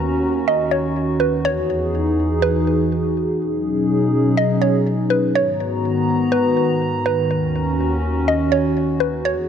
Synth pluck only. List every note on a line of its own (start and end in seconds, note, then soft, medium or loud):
0.48 0.71 D#5 medium
0.71 1.17 C#5 medium
1.20 1.43 B4 medium
1.45 2.38 C#5 loud
2.42 2.88 B4 medium
4.37 4.61 D#5 medium
4.62 5.07 C#5 medium
5.10 5.34 B4 medium
5.35 6.29 C#5 loud
6.32 7.01 B4 medium
7.06 7.29 B4 medium
8.28 8.51 D#5 medium
8.52 8.98 C#5 medium
9.00 9.24 B4 medium
9.25 9.48 C#5 loud